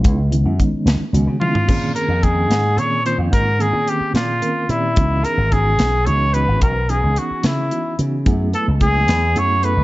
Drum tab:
CC |------------|x-----------|------------|------------|
HH |x-x-x-x-x---|--x-x-x-x-x-|x-x-x-x-x-x-|x-x-x-x-x-x-|
SD |------o-----|------o-----|------o-----|------o-----|
T1 |----------o-|------------|------------|------------|
FT |-----------o|------------|------------|------------|
BD |o---o-------|o---o-------|o-----------|o---o-------|

CC |------------|------------|
HH |x-x-x-x-x-x-|x-x-x-x-x-x-|
SD |------o-----|------o-----|
T1 |------------|------------|
FT |------------|------------|
BD |o-----------|o---o-------|